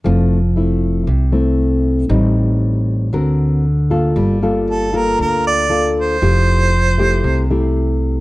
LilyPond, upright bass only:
\new Staff \with { instrumentName = "Upright bass" } { \clef bass \time 4/4 \key f \major \tempo 4 = 117 f,,2 c,2 | a,,2 d,2 | g,,2 d,2 | f,,2 c,2 | }